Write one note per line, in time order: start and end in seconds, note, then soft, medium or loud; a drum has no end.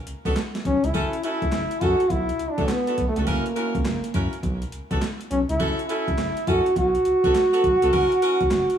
0.07 0.14 C#2 medium
0.07 closed hi-hat medium
0.25 0.33 C#2 medium
0.25 0.39 B3 medium
0.25 0.39 D4 medium
0.25 0.39 F#4 medium
0.25 0.40 A4 medium
0.25 kick loud
0.25 closed hi-hat soft
0.36 snare loud
0.36 clap medium
0.36 closed hi-hat medium
0.55 snare medium
0.55 closed hi-hat medium
0.65 0.79 B1 medium
0.65 0.86 C#4 medium
0.65 kick medium
0.65 closed hi-hat medium
0.84 0.91 C#2 loud
0.84 1.24 E4 medium
0.84 closed hi-hat medium
0.94 1.08 F#1 loud
0.94 1.15 C#4 medium
0.94 1.15 E4 medium
0.94 1.15 F#4 medium
0.94 1.15 A4 loud
0.94 kick loud
0.94 closed hi-hat medium
1.13 closed hi-hat medium
1.23 1.44 C#4 medium
1.23 1.44 E4 medium
1.23 1.84 E4 loud
1.23 1.44 F#4 medium
1.23 1.44 A4 medium
1.23 closed hi-hat medium
1.42 1.50 C#2 medium
1.42 kick medium
1.42 closed hi-hat soft
1.52 1.66 F#1 medium
1.52 snare loud
1.52 clap medium
1.52 closed hi-hat medium
1.71 closed hi-hat medium
1.81 1.95 F#2 medium
1.81 2.02 C#4 medium
1.81 2.02 E4 medium
1.81 2.02 F#4 medium
1.81 2.13 F#4 loud
1.81 2.02 A4 medium
1.81 kick loud
1.81 closed hi-hat medium
2.00 closed hi-hat soft
2.10 2.32 B1 loud
2.10 2.52 E4 medium
2.10 kick loud
2.10 closed hi-hat medium
2.29 closed hi-hat soft
2.39 2.47 C#2 soft
2.39 closed hi-hat medium
2.51 2.71 D4 medium
2.58 2.66 C#2 medium
2.58 2.72 B3 medium
2.58 2.72 D4 medium
2.58 2.72 F#4 medium
2.58 2.73 A4 medium
2.58 kick loud
2.58 closed hi-hat soft
2.68 3.08 B3 medium
2.68 snare loud
2.68 clap loud
2.68 closed hi-hat medium
2.87 3.01 B3 medium
2.87 3.01 D4 medium
2.87 3.01 F#4 medium
2.87 3.02 A4 medium
2.87 closed hi-hat medium
2.98 3.12 B1 medium
2.98 kick medium
2.98 closed hi-hat medium
3.08 3.29 A3 medium
3.16 3.25 C#2 medium
3.16 3.30 B3 medium
3.16 3.31 D4 medium
3.16 3.26 F#4 medium
3.16 3.31 A4 medium
3.16 closed hi-hat medium
3.26 3.41 F#1 loud
3.26 4.15 A#3 medium
3.26 3.47 C#4 medium
3.26 3.47 E4 medium
3.26 3.48 F#4 medium
3.26 3.48 A#4 medium
3.26 kick loud
3.26 closed hi-hat medium
3.46 closed hi-hat soft
3.56 3.76 C#4 medium
3.56 3.77 E4 medium
3.56 3.77 F#4 medium
3.56 3.77 A#4 medium
3.56 closed hi-hat medium
3.75 3.83 C#2 medium
3.75 kick medium
3.75 closed hi-hat soft
3.85 3.99 F#1 medium
3.85 snare loud
3.85 clap medium
3.85 closed hi-hat medium
4.04 closed hi-hat medium
4.14 4.28 F#2 medium
4.14 4.35 C#4 medium
4.14 4.35 E4 medium
4.14 4.35 F#4 medium
4.14 4.35 A#4 medium
4.14 kick medium
4.14 closed hi-hat medium
4.33 closed hi-hat soft
4.43 4.65 B1 loud
4.43 kick medium
4.43 closed hi-hat medium
4.62 closed hi-hat soft
4.72 4.80 C#2 soft
4.72 closed hi-hat medium
4.91 4.99 C#2 loud
4.91 5.05 B3 medium
4.91 5.05 D4 medium
4.91 5.05 F#4 medium
4.91 5.05 A4 medium
4.91 kick loud
4.91 closed hi-hat medium
5.02 snare loud
5.02 clap loud
5.02 closed hi-hat medium
5.21 closed hi-hat soft
5.31 5.45 B1 medium
5.31 5.39 C#4 medium
5.31 closed hi-hat medium
5.49 5.57 C#2 medium
5.49 5.86 E4 medium
5.49 closed hi-hat medium
5.59 5.74 F#1 loud
5.59 5.80 C#4 medium
5.59 5.80 E4 medium
5.59 5.81 F#4 medium
5.59 5.81 A4 loud
5.59 kick loud
5.59 closed hi-hat medium
5.79 closed hi-hat soft
5.88 6.09 C#4 medium
5.88 6.10 E4 medium
5.88 6.50 E4 loud
5.88 6.10 F#4 medium
5.88 6.10 A4 medium
5.88 closed hi-hat medium
6.08 6.15 C#2 medium
6.08 kick medium
6.08 closed hi-hat soft
6.18 6.32 F#1 medium
6.18 snare loud
6.18 clap medium
6.18 closed hi-hat medium
6.37 closed hi-hat medium
6.47 6.61 F#2 medium
6.47 6.68 C#4 medium
6.47 6.68 E4 medium
6.47 6.68 F#4 medium
6.47 6.77 F#4 loud
6.47 6.68 A4 medium
6.47 kick medium
6.47 closed hi-hat medium
6.66 closed hi-hat soft
6.76 6.98 B1 loud
6.76 8.78 F#4 loud
6.76 kick medium
6.76 closed hi-hat medium
6.95 closed hi-hat soft
7.05 7.14 C#2 soft
7.05 closed hi-hat medium
7.24 7.32 C#2 medium
7.24 7.38 B3 medium
7.24 7.38 D4 medium
7.24 7.38 F#4 medium
7.24 7.38 A4 medium
7.24 kick loud
7.24 closed hi-hat medium
7.35 snare loud
7.35 clap medium
7.35 closed hi-hat medium
7.52 7.67 B3 medium
7.52 7.67 D4 medium
7.52 7.67 F#4 medium
7.52 7.67 A4 medium
7.52 closed hi-hat medium
7.64 7.78 B1 medium
7.64 kick medium
7.64 closed hi-hat medium
7.82 7.91 C#2 medium
7.82 7.96 B3 medium
7.82 7.96 D4 medium
7.82 7.91 F#4 medium
7.82 7.97 A4 medium
7.82 closed hi-hat medium
7.92 8.07 F#1 loud
7.92 8.13 C#4 medium
7.92 8.13 E4 medium
7.92 8.13 F#4 medium
7.92 8.13 A#4 loud
7.92 kick loud
7.92 closed hi-hat medium
8.12 closed hi-hat medium
8.22 8.42 C#4 medium
8.22 8.43 E4 medium
8.22 8.43 F#4 medium
8.22 8.43 A#4 medium
8.22 closed hi-hat medium
8.41 8.48 C#2 medium
8.41 kick loud
8.41 closed hi-hat soft
8.51 8.66 F#1 medium
8.51 snare loud
8.51 clap medium
8.51 closed hi-hat medium
8.70 closed hi-hat medium